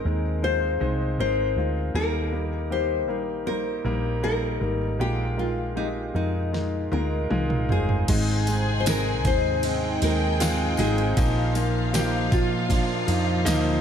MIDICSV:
0, 0, Header, 1, 7, 480
1, 0, Start_track
1, 0, Key_signature, -3, "major"
1, 0, Tempo, 761421
1, 1229, Time_signature, 4, 2, 24, 8
1, 3631, Tempo, 770218
1, 8647, End_track
2, 0, Start_track
2, 0, Title_t, "Violin section"
2, 0, Program_c, 0, 48
2, 5078, Note_on_c, 0, 68, 88
2, 5079, Note_on_c, 0, 80, 90
2, 6025, Note_off_c, 0, 68, 0
2, 6025, Note_off_c, 0, 80, 0
2, 6044, Note_on_c, 0, 79, 89
2, 6046, Note_on_c, 0, 68, 82
2, 6983, Note_off_c, 0, 79, 0
2, 6984, Note_off_c, 0, 68, 0
2, 7003, Note_on_c, 0, 65, 86
2, 7003, Note_on_c, 0, 77, 97
2, 8647, Note_off_c, 0, 65, 0
2, 8647, Note_off_c, 0, 77, 0
2, 8647, End_track
3, 0, Start_track
3, 0, Title_t, "Nylon-string guitar"
3, 0, Program_c, 1, 24
3, 0, Note_on_c, 1, 70, 77
3, 274, Note_off_c, 1, 70, 0
3, 277, Note_on_c, 1, 72, 88
3, 751, Note_off_c, 1, 72, 0
3, 759, Note_on_c, 1, 72, 90
3, 1229, Note_off_c, 1, 72, 0
3, 1232, Note_on_c, 1, 70, 87
3, 1713, Note_off_c, 1, 70, 0
3, 1715, Note_on_c, 1, 72, 80
3, 2184, Note_off_c, 1, 72, 0
3, 2186, Note_on_c, 1, 70, 79
3, 2642, Note_off_c, 1, 70, 0
3, 2670, Note_on_c, 1, 70, 79
3, 3155, Note_off_c, 1, 70, 0
3, 3157, Note_on_c, 1, 67, 77
3, 3399, Note_on_c, 1, 65, 67
3, 3401, Note_off_c, 1, 67, 0
3, 3634, Note_off_c, 1, 65, 0
3, 3637, Note_on_c, 1, 63, 68
3, 3700, Note_off_c, 1, 63, 0
3, 3879, Note_on_c, 1, 63, 61
3, 4358, Note_on_c, 1, 70, 62
3, 4818, Note_off_c, 1, 70, 0
3, 4819, Note_off_c, 1, 63, 0
3, 4852, Note_on_c, 1, 68, 67
3, 5524, Note_off_c, 1, 68, 0
3, 5526, Note_on_c, 1, 72, 63
3, 5568, Note_off_c, 1, 72, 0
3, 5578, Note_on_c, 1, 70, 80
3, 5795, Note_off_c, 1, 70, 0
3, 5819, Note_on_c, 1, 72, 87
3, 6295, Note_off_c, 1, 72, 0
3, 6298, Note_on_c, 1, 70, 81
3, 6767, Note_off_c, 1, 70, 0
3, 6769, Note_on_c, 1, 68, 95
3, 7458, Note_off_c, 1, 68, 0
3, 7481, Note_on_c, 1, 67, 85
3, 7724, Note_off_c, 1, 67, 0
3, 7726, Note_on_c, 1, 65, 89
3, 8647, Note_off_c, 1, 65, 0
3, 8647, End_track
4, 0, Start_track
4, 0, Title_t, "Grand piano"
4, 0, Program_c, 2, 0
4, 0, Control_c, 2, 64, 127
4, 0, Note_on_c, 2, 44, 53
4, 0, Note_on_c, 2, 56, 57
4, 0, Note_on_c, 2, 60, 55
4, 0, Note_on_c, 2, 63, 58
4, 0, Note_on_c, 2, 68, 60
4, 0, Note_on_c, 2, 70, 81
4, 0, Note_on_c, 2, 72, 65
4, 32, Note_off_c, 2, 56, 0
4, 32, Note_on_c, 2, 56, 56
4, 33, Note_off_c, 2, 60, 0
4, 33, Note_on_c, 2, 60, 51
4, 35, Note_off_c, 2, 63, 0
4, 35, Note_on_c, 2, 63, 50
4, 36, Note_off_c, 2, 70, 0
4, 36, Note_on_c, 2, 70, 62
4, 257, Note_off_c, 2, 56, 0
4, 258, Note_off_c, 2, 60, 0
4, 261, Note_off_c, 2, 63, 0
4, 262, Note_off_c, 2, 70, 0
4, 267, Note_on_c, 2, 56, 61
4, 268, Note_on_c, 2, 60, 59
4, 270, Note_on_c, 2, 63, 55
4, 275, Note_on_c, 2, 65, 66
4, 497, Note_off_c, 2, 56, 0
4, 498, Note_off_c, 2, 60, 0
4, 499, Note_off_c, 2, 63, 0
4, 501, Note_off_c, 2, 65, 0
4, 506, Note_on_c, 2, 56, 72
4, 507, Note_on_c, 2, 60, 66
4, 510, Note_off_c, 2, 72, 0
4, 510, Note_on_c, 2, 72, 82
4, 511, Note_on_c, 2, 63, 72
4, 736, Note_off_c, 2, 56, 0
4, 737, Note_off_c, 2, 60, 0
4, 738, Note_off_c, 2, 72, 0
4, 739, Note_off_c, 2, 63, 0
4, 752, Note_on_c, 2, 56, 77
4, 753, Note_on_c, 2, 60, 66
4, 756, Note_on_c, 2, 63, 70
4, 758, Note_on_c, 2, 70, 80
4, 979, Note_off_c, 2, 56, 0
4, 979, Note_off_c, 2, 60, 0
4, 980, Note_off_c, 2, 63, 0
4, 981, Note_off_c, 2, 70, 0
4, 989, Note_on_c, 2, 56, 59
4, 993, Note_on_c, 2, 60, 55
4, 994, Note_on_c, 2, 63, 54
4, 997, Note_on_c, 2, 65, 67
4, 1216, Note_off_c, 2, 56, 0
4, 1218, Note_off_c, 2, 60, 0
4, 1219, Note_off_c, 2, 63, 0
4, 1220, Note_off_c, 2, 65, 0
4, 1228, Note_on_c, 2, 55, 76
4, 1229, Note_on_c, 2, 58, 72
4, 1231, Note_on_c, 2, 51, 52
4, 1232, Note_on_c, 2, 63, 71
4, 1233, Note_on_c, 2, 70, 84
4, 1237, Control_c, 2, 64, 0
4, 1241, Note_off_c, 2, 44, 0
4, 1243, Note_off_c, 2, 68, 0
4, 1351, Control_c, 2, 64, 127
4, 1455, Note_off_c, 2, 55, 0
4, 1456, Note_off_c, 2, 58, 0
4, 1458, Note_off_c, 2, 63, 0
4, 1458, Note_off_c, 2, 70, 0
4, 1465, Note_on_c, 2, 55, 57
4, 1467, Note_on_c, 2, 58, 53
4, 1468, Note_on_c, 2, 63, 52
4, 1473, Note_on_c, 2, 70, 64
4, 1694, Note_off_c, 2, 55, 0
4, 1694, Note_off_c, 2, 58, 0
4, 1695, Note_off_c, 2, 63, 0
4, 1698, Note_off_c, 2, 70, 0
4, 1704, Note_on_c, 2, 55, 62
4, 1705, Note_on_c, 2, 58, 55
4, 1708, Note_on_c, 2, 63, 54
4, 1711, Note_on_c, 2, 67, 70
4, 1922, Note_off_c, 2, 51, 0
4, 1931, Note_off_c, 2, 55, 0
4, 1933, Note_off_c, 2, 58, 0
4, 1935, Note_off_c, 2, 63, 0
4, 1936, Note_off_c, 2, 67, 0
4, 1940, Note_on_c, 2, 55, 57
4, 1943, Note_on_c, 2, 58, 54
4, 1944, Note_on_c, 2, 63, 51
4, 1948, Note_on_c, 2, 70, 64
4, 2171, Note_off_c, 2, 55, 0
4, 2172, Note_off_c, 2, 58, 0
4, 2173, Note_off_c, 2, 63, 0
4, 2175, Note_off_c, 2, 70, 0
4, 2183, Note_on_c, 2, 55, 56
4, 2184, Note_on_c, 2, 58, 55
4, 2186, Note_on_c, 2, 63, 54
4, 2188, Note_on_c, 2, 72, 71
4, 2413, Note_off_c, 2, 55, 0
4, 2413, Note_off_c, 2, 58, 0
4, 2414, Note_off_c, 2, 63, 0
4, 2415, Note_off_c, 2, 72, 0
4, 2424, Note_on_c, 2, 55, 76
4, 2426, Note_on_c, 2, 58, 71
4, 2429, Note_on_c, 2, 63, 67
4, 2429, Note_on_c, 2, 70, 81
4, 2653, Note_off_c, 2, 55, 0
4, 2655, Note_off_c, 2, 58, 0
4, 2656, Note_off_c, 2, 63, 0
4, 2656, Note_off_c, 2, 70, 0
4, 2666, Note_on_c, 2, 55, 76
4, 2668, Note_on_c, 2, 58, 66
4, 2671, Note_on_c, 2, 63, 68
4, 2673, Note_on_c, 2, 70, 79
4, 2892, Note_off_c, 2, 55, 0
4, 2896, Note_off_c, 2, 58, 0
4, 2898, Note_off_c, 2, 63, 0
4, 2899, Note_off_c, 2, 70, 0
4, 2902, Note_on_c, 2, 55, 55
4, 2907, Note_on_c, 2, 58, 52
4, 2907, Note_on_c, 2, 63, 52
4, 2910, Note_on_c, 2, 70, 64
4, 3134, Note_off_c, 2, 55, 0
4, 3136, Note_off_c, 2, 58, 0
4, 3136, Note_off_c, 2, 63, 0
4, 3138, Note_off_c, 2, 70, 0
4, 3145, Note_on_c, 2, 56, 74
4, 3147, Note_on_c, 2, 63, 66
4, 3148, Note_on_c, 2, 46, 49
4, 3151, Note_on_c, 2, 65, 69
4, 3152, Note_on_c, 2, 70, 77
4, 3156, Control_c, 2, 64, 0
4, 3268, Control_c, 2, 64, 127
4, 3373, Note_off_c, 2, 56, 0
4, 3373, Note_off_c, 2, 63, 0
4, 3377, Note_off_c, 2, 65, 0
4, 3378, Note_off_c, 2, 70, 0
4, 3382, Note_on_c, 2, 56, 54
4, 3383, Note_on_c, 2, 63, 50
4, 3387, Note_on_c, 2, 65, 52
4, 3388, Note_on_c, 2, 70, 63
4, 3616, Note_off_c, 2, 56, 0
4, 3616, Note_off_c, 2, 63, 0
4, 3618, Note_off_c, 2, 65, 0
4, 3618, Note_off_c, 2, 70, 0
4, 3628, Note_on_c, 2, 56, 61
4, 3631, Note_on_c, 2, 63, 57
4, 3632, Note_on_c, 2, 65, 55
4, 3634, Note_on_c, 2, 67, 64
4, 3846, Note_off_c, 2, 46, 0
4, 3857, Note_off_c, 2, 56, 0
4, 3859, Note_off_c, 2, 63, 0
4, 3859, Note_off_c, 2, 65, 0
4, 3860, Note_off_c, 2, 67, 0
4, 3867, Note_on_c, 2, 56, 57
4, 3871, Note_on_c, 2, 63, 50
4, 3873, Note_on_c, 2, 65, 50
4, 3874, Note_on_c, 2, 70, 61
4, 4097, Note_off_c, 2, 56, 0
4, 4098, Note_off_c, 2, 63, 0
4, 4099, Note_off_c, 2, 65, 0
4, 4100, Note_off_c, 2, 70, 0
4, 4108, Note_on_c, 2, 56, 56
4, 4109, Note_on_c, 2, 63, 50
4, 4111, Note_on_c, 2, 65, 51
4, 4115, Note_on_c, 2, 70, 59
4, 4338, Note_off_c, 2, 56, 0
4, 4338, Note_off_c, 2, 63, 0
4, 4339, Note_off_c, 2, 65, 0
4, 4342, Note_off_c, 2, 70, 0
4, 4350, Note_on_c, 2, 56, 70
4, 4351, Note_on_c, 2, 63, 61
4, 4355, Note_on_c, 2, 65, 64
4, 4356, Note_on_c, 2, 70, 76
4, 4582, Note_off_c, 2, 56, 0
4, 4583, Note_off_c, 2, 63, 0
4, 4585, Note_off_c, 2, 65, 0
4, 4585, Note_off_c, 2, 70, 0
4, 4592, Note_on_c, 2, 56, 85
4, 4595, Note_on_c, 2, 63, 76
4, 4597, Note_on_c, 2, 65, 75
4, 4599, Note_on_c, 2, 70, 86
4, 4826, Note_off_c, 2, 56, 0
4, 4827, Note_off_c, 2, 63, 0
4, 4828, Note_off_c, 2, 65, 0
4, 4830, Note_off_c, 2, 70, 0
4, 4836, Note_on_c, 2, 56, 62
4, 4839, Note_on_c, 2, 63, 55
4, 4839, Note_on_c, 2, 65, 57
4, 4841, Note_on_c, 2, 72, 69
4, 5068, Note_off_c, 2, 56, 0
4, 5070, Note_off_c, 2, 63, 0
4, 5070, Note_off_c, 2, 65, 0
4, 5071, Note_off_c, 2, 72, 0
4, 5082, Note_on_c, 2, 56, 92
4, 5083, Note_on_c, 2, 44, 61
4, 5083, Note_on_c, 2, 60, 82
4, 5085, Note_on_c, 2, 63, 91
4, 5090, Control_c, 2, 64, 0
4, 5185, Control_c, 2, 64, 127
4, 5312, Note_off_c, 2, 56, 0
4, 5312, Note_off_c, 2, 60, 0
4, 5313, Note_off_c, 2, 63, 0
4, 5325, Note_on_c, 2, 56, 67
4, 5325, Note_on_c, 2, 60, 58
4, 5328, Note_on_c, 2, 63, 72
4, 5553, Note_off_c, 2, 56, 0
4, 5553, Note_off_c, 2, 60, 0
4, 5555, Note_off_c, 2, 63, 0
4, 5562, Note_on_c, 2, 56, 74
4, 5567, Note_on_c, 2, 60, 67
4, 5568, Note_on_c, 2, 63, 79
4, 5781, Note_off_c, 2, 44, 0
4, 5791, Note_off_c, 2, 56, 0
4, 5794, Note_off_c, 2, 60, 0
4, 5795, Note_off_c, 2, 63, 0
4, 5801, Note_on_c, 2, 56, 70
4, 5804, Note_on_c, 2, 60, 58
4, 5808, Note_on_c, 2, 63, 74
4, 6032, Note_off_c, 2, 56, 0
4, 6034, Note_off_c, 2, 60, 0
4, 6035, Note_off_c, 2, 63, 0
4, 6049, Note_on_c, 2, 56, 69
4, 6051, Note_on_c, 2, 60, 65
4, 6053, Note_on_c, 2, 63, 77
4, 6276, Note_off_c, 2, 56, 0
4, 6277, Note_off_c, 2, 60, 0
4, 6278, Note_off_c, 2, 63, 0
4, 6286, Note_on_c, 2, 56, 69
4, 6287, Note_on_c, 2, 60, 66
4, 6289, Note_on_c, 2, 63, 73
4, 6512, Note_off_c, 2, 56, 0
4, 6514, Note_off_c, 2, 60, 0
4, 6515, Note_off_c, 2, 63, 0
4, 6521, Note_on_c, 2, 56, 89
4, 6524, Note_on_c, 2, 60, 79
4, 6526, Note_on_c, 2, 65, 101
4, 6749, Note_off_c, 2, 56, 0
4, 6751, Note_off_c, 2, 60, 0
4, 6752, Note_off_c, 2, 65, 0
4, 6758, Note_on_c, 2, 56, 85
4, 6763, Note_on_c, 2, 60, 83
4, 6766, Note_on_c, 2, 63, 102
4, 6988, Note_off_c, 2, 56, 0
4, 6991, Note_off_c, 2, 60, 0
4, 6992, Note_off_c, 2, 63, 0
4, 7001, Note_on_c, 2, 53, 92
4, 7004, Note_on_c, 2, 58, 80
4, 7006, Note_on_c, 2, 46, 59
4, 7007, Note_on_c, 2, 63, 104
4, 7011, Control_c, 2, 64, 0
4, 7134, Control_c, 2, 64, 127
4, 7229, Note_off_c, 2, 53, 0
4, 7230, Note_off_c, 2, 58, 0
4, 7232, Note_off_c, 2, 63, 0
4, 7240, Note_on_c, 2, 53, 70
4, 7242, Note_on_c, 2, 58, 65
4, 7245, Note_on_c, 2, 63, 75
4, 7468, Note_off_c, 2, 53, 0
4, 7468, Note_off_c, 2, 58, 0
4, 7470, Note_off_c, 2, 63, 0
4, 7477, Note_on_c, 2, 53, 76
4, 7480, Note_on_c, 2, 58, 68
4, 7482, Note_on_c, 2, 63, 82
4, 7695, Note_off_c, 2, 46, 0
4, 7701, Note_off_c, 2, 53, 0
4, 7704, Note_off_c, 2, 58, 0
4, 7707, Note_off_c, 2, 63, 0
4, 7710, Note_on_c, 2, 53, 74
4, 7714, Note_on_c, 2, 58, 65
4, 7716, Note_on_c, 2, 65, 81
4, 7939, Note_off_c, 2, 53, 0
4, 7941, Note_off_c, 2, 58, 0
4, 7943, Note_off_c, 2, 65, 0
4, 7948, Note_on_c, 2, 53, 74
4, 7951, Note_on_c, 2, 58, 69
4, 7956, Note_on_c, 2, 62, 85
4, 8176, Note_off_c, 2, 53, 0
4, 8179, Note_off_c, 2, 58, 0
4, 8182, Note_off_c, 2, 62, 0
4, 8186, Note_on_c, 2, 53, 72
4, 8189, Note_on_c, 2, 58, 67
4, 8192, Note_on_c, 2, 63, 80
4, 8414, Note_off_c, 2, 53, 0
4, 8416, Note_off_c, 2, 58, 0
4, 8419, Note_off_c, 2, 63, 0
4, 8423, Note_on_c, 2, 53, 113
4, 8425, Note_on_c, 2, 58, 106
4, 8428, Note_on_c, 2, 63, 126
4, 8647, Note_off_c, 2, 53, 0
4, 8647, Note_off_c, 2, 58, 0
4, 8647, Note_off_c, 2, 63, 0
4, 8647, End_track
5, 0, Start_track
5, 0, Title_t, "Analog synth pad"
5, 0, Program_c, 3, 89
5, 5086, Note_on_c, 3, 60, 68
5, 5087, Note_on_c, 3, 63, 87
5, 5088, Note_on_c, 3, 44, 74
5, 5089, Note_on_c, 3, 48, 65
5, 6986, Note_off_c, 3, 44, 0
5, 6986, Note_off_c, 3, 60, 0
5, 6986, Note_off_c, 3, 63, 0
5, 6987, Note_off_c, 3, 48, 0
5, 7002, Note_on_c, 3, 58, 68
5, 7005, Note_on_c, 3, 46, 73
5, 7005, Note_on_c, 3, 53, 69
5, 7005, Note_on_c, 3, 65, 89
5, 8647, Note_off_c, 3, 46, 0
5, 8647, Note_off_c, 3, 53, 0
5, 8647, Note_off_c, 3, 58, 0
5, 8647, Note_off_c, 3, 65, 0
5, 8647, End_track
6, 0, Start_track
6, 0, Title_t, "Fretless electric bass"
6, 0, Program_c, 4, 35
6, 32, Note_on_c, 4, 39, 80
6, 487, Note_off_c, 4, 39, 0
6, 512, Note_on_c, 4, 36, 68
6, 734, Note_off_c, 4, 36, 0
6, 746, Note_on_c, 4, 32, 81
6, 971, Note_off_c, 4, 32, 0
6, 985, Note_on_c, 4, 38, 67
6, 1210, Note_off_c, 4, 38, 0
6, 1225, Note_on_c, 4, 39, 85
6, 1944, Note_off_c, 4, 39, 0
6, 1944, Note_on_c, 4, 34, 72
6, 2400, Note_off_c, 4, 34, 0
6, 2424, Note_on_c, 4, 34, 68
6, 2881, Note_off_c, 4, 34, 0
6, 2907, Note_on_c, 4, 32, 72
6, 3131, Note_off_c, 4, 32, 0
6, 3148, Note_on_c, 4, 34, 74
6, 3845, Note_off_c, 4, 34, 0
6, 3871, Note_on_c, 4, 41, 68
6, 4326, Note_off_c, 4, 41, 0
6, 4352, Note_on_c, 4, 38, 71
6, 4579, Note_off_c, 4, 38, 0
6, 4596, Note_on_c, 4, 36, 62
6, 4842, Note_on_c, 4, 31, 68
6, 4851, Note_off_c, 4, 36, 0
6, 5067, Note_off_c, 4, 31, 0
6, 5082, Note_on_c, 4, 32, 103
6, 5806, Note_off_c, 4, 32, 0
6, 5806, Note_on_c, 4, 39, 86
6, 6261, Note_off_c, 4, 39, 0
6, 6286, Note_on_c, 4, 39, 80
6, 6739, Note_off_c, 4, 39, 0
6, 6763, Note_on_c, 4, 32, 86
6, 6986, Note_off_c, 4, 32, 0
6, 7004, Note_on_c, 4, 34, 98
6, 7694, Note_off_c, 4, 34, 0
6, 7720, Note_on_c, 4, 46, 86
6, 8169, Note_off_c, 4, 46, 0
6, 8191, Note_on_c, 4, 41, 89
6, 8414, Note_off_c, 4, 41, 0
6, 8430, Note_on_c, 4, 38, 95
6, 8647, Note_off_c, 4, 38, 0
6, 8647, End_track
7, 0, Start_track
7, 0, Title_t, "Drums"
7, 4119, Note_on_c, 9, 38, 45
7, 4182, Note_off_c, 9, 38, 0
7, 4353, Note_on_c, 9, 48, 57
7, 4415, Note_off_c, 9, 48, 0
7, 4594, Note_on_c, 9, 47, 71
7, 4656, Note_off_c, 9, 47, 0
7, 4716, Note_on_c, 9, 45, 58
7, 4778, Note_off_c, 9, 45, 0
7, 4834, Note_on_c, 9, 43, 74
7, 4897, Note_off_c, 9, 43, 0
7, 4957, Note_on_c, 9, 43, 70
7, 5020, Note_off_c, 9, 43, 0
7, 5078, Note_on_c, 9, 51, 75
7, 5079, Note_on_c, 9, 49, 98
7, 5081, Note_on_c, 9, 36, 110
7, 5089, Note_on_c, 9, 54, 44
7, 5141, Note_off_c, 9, 49, 0
7, 5141, Note_off_c, 9, 51, 0
7, 5143, Note_off_c, 9, 36, 0
7, 5151, Note_off_c, 9, 54, 0
7, 5320, Note_on_c, 9, 51, 62
7, 5321, Note_on_c, 9, 54, 47
7, 5382, Note_off_c, 9, 51, 0
7, 5383, Note_off_c, 9, 54, 0
7, 5564, Note_on_c, 9, 51, 68
7, 5567, Note_on_c, 9, 54, 79
7, 5570, Note_on_c, 9, 38, 100
7, 5626, Note_off_c, 9, 51, 0
7, 5629, Note_off_c, 9, 54, 0
7, 5633, Note_off_c, 9, 38, 0
7, 5805, Note_on_c, 9, 51, 54
7, 5806, Note_on_c, 9, 36, 85
7, 5806, Note_on_c, 9, 54, 30
7, 5867, Note_off_c, 9, 51, 0
7, 5868, Note_off_c, 9, 54, 0
7, 5869, Note_off_c, 9, 36, 0
7, 6043, Note_on_c, 9, 51, 77
7, 6105, Note_off_c, 9, 51, 0
7, 6285, Note_on_c, 9, 51, 66
7, 6285, Note_on_c, 9, 54, 48
7, 6347, Note_off_c, 9, 51, 0
7, 6347, Note_off_c, 9, 54, 0
7, 6525, Note_on_c, 9, 51, 84
7, 6529, Note_on_c, 9, 54, 84
7, 6536, Note_on_c, 9, 38, 111
7, 6587, Note_off_c, 9, 51, 0
7, 6591, Note_off_c, 9, 54, 0
7, 6598, Note_off_c, 9, 38, 0
7, 6755, Note_on_c, 9, 54, 47
7, 6764, Note_on_c, 9, 51, 53
7, 6817, Note_off_c, 9, 54, 0
7, 6827, Note_off_c, 9, 51, 0
7, 6885, Note_on_c, 9, 51, 38
7, 6947, Note_off_c, 9, 51, 0
7, 7002, Note_on_c, 9, 51, 75
7, 7003, Note_on_c, 9, 36, 105
7, 7010, Note_on_c, 9, 54, 45
7, 7065, Note_off_c, 9, 51, 0
7, 7066, Note_off_c, 9, 36, 0
7, 7072, Note_off_c, 9, 54, 0
7, 7240, Note_on_c, 9, 54, 46
7, 7241, Note_on_c, 9, 51, 60
7, 7302, Note_off_c, 9, 54, 0
7, 7304, Note_off_c, 9, 51, 0
7, 7483, Note_on_c, 9, 51, 69
7, 7484, Note_on_c, 9, 54, 81
7, 7489, Note_on_c, 9, 38, 107
7, 7545, Note_off_c, 9, 51, 0
7, 7546, Note_off_c, 9, 54, 0
7, 7552, Note_off_c, 9, 38, 0
7, 7719, Note_on_c, 9, 51, 54
7, 7720, Note_on_c, 9, 36, 87
7, 7722, Note_on_c, 9, 54, 32
7, 7782, Note_off_c, 9, 36, 0
7, 7782, Note_off_c, 9, 51, 0
7, 7784, Note_off_c, 9, 54, 0
7, 7953, Note_on_c, 9, 54, 31
7, 7956, Note_on_c, 9, 36, 89
7, 7959, Note_on_c, 9, 51, 84
7, 8015, Note_off_c, 9, 54, 0
7, 8018, Note_off_c, 9, 36, 0
7, 8021, Note_off_c, 9, 51, 0
7, 8193, Note_on_c, 9, 51, 64
7, 8195, Note_on_c, 9, 54, 49
7, 8255, Note_off_c, 9, 51, 0
7, 8257, Note_off_c, 9, 54, 0
7, 8432, Note_on_c, 9, 51, 88
7, 8436, Note_on_c, 9, 54, 83
7, 8443, Note_on_c, 9, 38, 105
7, 8495, Note_off_c, 9, 51, 0
7, 8498, Note_off_c, 9, 54, 0
7, 8506, Note_off_c, 9, 38, 0
7, 8647, End_track
0, 0, End_of_file